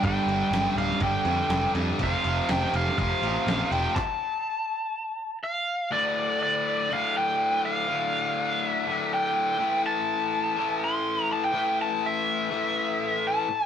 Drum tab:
CC |x-x-x-x-x-x-x-x-|x-x-x-x-x-x-x-x-|----------------|----------------|
CP |----------------|----------------|x---------------|----------------|
SD |----o--o----o---|----o--o----o---|----------------|----------------|
BD |o-------o-------|o-------o-------|o---------------|----------------|

CC |----------------|----------------|----------------|
CP |----------------|----------------|----------------|
SD |----------------|----------------|----------------|
BD |----------------|----------------|----------------|